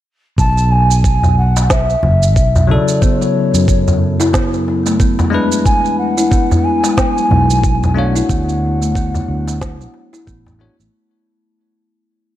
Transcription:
0.38 B1 A5, kick, darbuka ka, shaker
0.57 darbuka ka, shaker
0.71 G#5
0.91 shaker
1.04 kick, shaker
1.23 darbuka dum, shaker
1.38 F#5
1.57 darbuka tek, shaker
1.70 E5, kick, snare, shaker
1.90 shaker
2.03 F#1, darbuka dum
2.23 shaker
2.36 B1, kick, shaker
2.56 darbuka dum, shaker
2.67 C#3 F#3 E4 E5
2.71 A4 D5
2.88 shaker
3.02 B3 C5, kick, darbuka ka, shaker
3.18 F#3 C#5, shaker
3.54 F#2, darbuka tek, shaker
3.68 kick, shaker
3.88 darbuka dum, shaker
4.20 E4, darbuka tek, shaker
4.33 B3, kick, snare, shaker
4.54 darbuka ka, shaker
4.68 darbuka ka
4.86 A3, darbuka tek, shaker
4.99 B3, kick, shaker
5.19 F#3, darbuka tek, darbuka dum, shaker
5.30 G#3 D4 E4, darbuka ka
5.34 B4
5.52 shaker
5.65 E2 G#5, kick, darbuka ka, shaker
5.85 darbuka ka, shaker
5.98 F#5
6.18 E4, shaker
6.31 B3, kick, shaker
6.51 darbuka dum, shaker
6.64 G#5
6.83 G#3, darbuka tek, shaker
6.97 B3 G#5, kick, snare, shaker
7.17 F#3, shaker
7.31 B1, darbuka dum
7.50 shaker
7.64 kick, shaker
7.83 darbuka dum, shaker
7.94 A3 D4 F#4 F#5
7.98 C#5
8.15 E4, shaker
8.29 D2 B3, kick, darbuka ka, shaker
8.49 shaker
8.81 A3, darbuka tek, shaker
8.95 B3, kick, shaker
9.14 F#3, darbuka dum, shaker
9.29 D2
9.48 darbuka tek, shaker
9.61 kick, snare, shaker
9.81 darbuka ka, shaker
9.94 darbuka ka
10.13 E4, darbuka tek, shaker
10.27 A1 B3, kick, shaker
10.46 darbuka tek, darbuka dum, shaker
10.59 A3 D4 F#4 C#5, darbuka ka
10.79 A1 A3, shaker

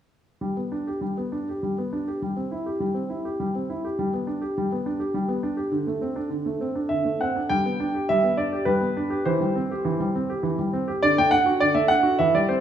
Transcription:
0.41 G3
0.57 B3
0.72 D4
0.87 G4
1.01 G3
1.18 B3
1.32 D4
1.49 G4
1.63 G3
1.78 B3
1.93 D4
2.08 G4
2.22 G3
2.37 C4
2.51 E4
2.66 G4
2.80 G3
2.94 C4
3.10 E4
3.25 G4
3.40 G3
3.55 C4
3.70 E4
3.85 G4
3.99 G3
4.14 B3
4.27 D4
4.41 G4
4.58 G3
4.72 B3
4.86 D4
5.00 G4
5.14 G3
5.28 B3
5.43 D4
5.57 G4
5.71 D3
5.87 A3
6.01 C4
6.16 D4
6.30 D3
6.46 A3
6.61 C4
6.75 D4
6.89 D3 E5
7.05 A3
7.21 C4 F#5
7.36 D4
7.49 G3 G5
7.65 B3
7.80 D4
7.95 G4
8.09 G3 E5
8.24 B3
8.37 D4 D5
8.53 G4
8.65 G3 B4
8.81 B3
8.97 D4
9.10 G4
9.25 E3 C5
9.41 G3
9.55 C4
9.71 G4
9.85 E3
10.00 G3
10.15 C4
10.29 G4
10.43 E3
10.59 G3
10.73 C4
10.88 G4
11.03 D3 D5
11.18 A3 G5
11.31 D4 F#5
11.46 F#4
11.60 D3 D5
11.75 A3 E5
11.88 D4 F#5
12.03 F#4
12.19 E3 E5
12.35 G3 D5
12.49 C4 C5

